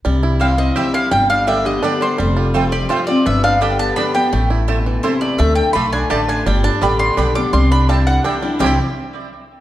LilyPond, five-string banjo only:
\new Staff \with { instrumentName = "Five-string banjo" } { \time 3/4 \key c \major \tempo 4 = 168 g8 e'8 g8 c'8 g'8 e'8 | g8 d'8 g8 d8 d'8 g8 | g8 f'8 c'8 g'8 f'8 c'8 | b8 d'8 g'8 b8 d'8 g'8 |
a8 e'8 a8 e8 e'8 a8 | a4 a8 d'8 g'8 d'8 | g8 d'8 g8 d8 d'8 g8 | g8 d'8 g8 d8 d'8 g8 |
<g c' e' g'>8 r2 r8 | }